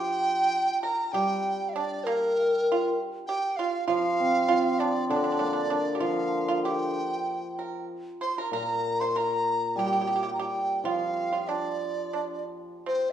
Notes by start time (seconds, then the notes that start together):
Already playing: F3 G4 G5
0.82 A#4 A#5
1.12 G3 G4 G5
1.69 F5
1.74 D4 D5
2.04 A#3 A#4
2.48 G3
2.72 F4
3.27 G4 G5
3.56 F4 F5
3.87 F3 F4 F5
4.20 C4
4.48 F4
4.79 D4 D5
5.09 D3 D4 D5
5.16 D4
5.24 D4
5.32 D4
5.39 A#3 D4
5.46 D4
5.53 D4
5.70 D4
5.95 G4
6.00 F3 F4 F5
6.48 F4
6.63 G4 G5
7.59 A#4
8.21 C5 C6
8.38 A#4 A#5
8.51 A#2 A#4 A#5
9.00 C5 C6
9.16 A#4 A#5
9.76 G3 G4 G5
9.87 G4
9.93 G4
10.01 G4
10.07 G4
10.16 G4
10.23 G4
10.34 A#5
10.39 G4 G5
10.84 F3 F4 F5
11.33 F4
11.48 D4 D5
12.13 D4
12.86 C4 C5